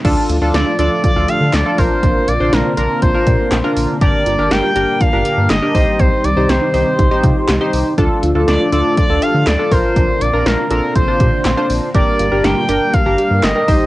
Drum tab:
CC |x-------|--------|--------|--------|
HH |xxxxxxxo|xxxxxxxo|xxxxxxxo|xxxoxxxo|
CP |------x-|------x-|------x-|------x-|
SD |--o---o-|--o---o-|--o---o-|--o---o-|
BD |o---o--o|o---oo--|o---o--o|o---oo--|

CC |--------|--------|--------|
HH |xxxxxxxo|xxxxxxxo|xxxxxxxo|
CP |------x-|------x-|------x-|
SD |--o---o-|--o---o-|--o---o-|
BD |o---o--o|o---oo--|o---o--o|